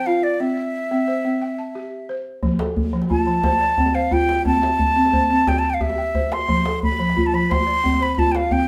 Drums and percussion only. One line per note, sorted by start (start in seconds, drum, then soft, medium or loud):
2.43 djembe bass medium
2.51 djembe tone medium
2.59 djembe slap medium
2.77 djembe bass medium
2.84 djembe tone medium
3.02 djembe slap medium
3.10 djembe bass medium
3.18 djembe tone soft
3.27 djembe slap soft
3.35 djembe slap soft
3.43 djembe slap medium
3.43 djembe bass medium
3.52 djembe slap soft
3.52 djembe tone medium
3.78 djembe slap soft
3.78 djembe bass medium
3.86 djembe slap soft
3.86 djembe tone soft
4.11 djembe slap soft
4.11 djembe bass medium
4.20 djembe tone soft
4.29 djembe slap medium
4.46 djembe bass medium
4.55 djembe tone medium
4.63 djembe slap medium
4.79 djembe bass medium
4.88 djembe tone medium
5.05 djembe slap soft
5.13 djembe bass medium
5.22 djembe tone soft
5.30 djembe slap soft
5.39 djembe slap soft
5.47 djembe slap medium
5.47 djembe bass medium
5.55 djembe slap soft
5.55 djembe tone soft
5.81 djembe slap soft
5.81 djembe bass medium
5.90 djembe slap soft
5.90 djembe tone soft
6.15 djembe slap soft
6.15 djembe bass medium
6.23 djembe tone medium
6.32 djembe slap medium
6.49 djembe bass medium
6.57 djembe tone medium
6.65 djembe slap medium
6.83 djembe bass medium
6.92 djembe tone soft
7.09 djembe slap medium
7.18 djembe bass medium
7.26 djembe tone soft
7.34 djembe slap soft
7.51 djembe slap medium
7.51 djembe bass medium
7.60 djembe slap soft
7.60 djembe tone soft
7.85 djembe slap soft
7.85 djembe bass medium
7.94 djembe slap soft
7.94 djembe tone medium
8.18 djembe slap soft
8.18 djembe bass medium
8.26 djembe tone medium
8.35 djembe slap medium
8.51 djembe bass medium
8.60 djembe tone medium